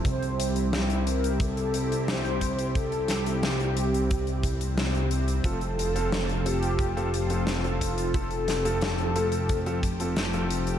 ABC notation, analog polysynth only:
X:1
M:4/4
L:1/8
Q:1/4=89
K:F
V:1 name="Analog polysynth"
c2 z B A2 c2 | A2 G4- G z | A3 G3 z F | A6 z2 |]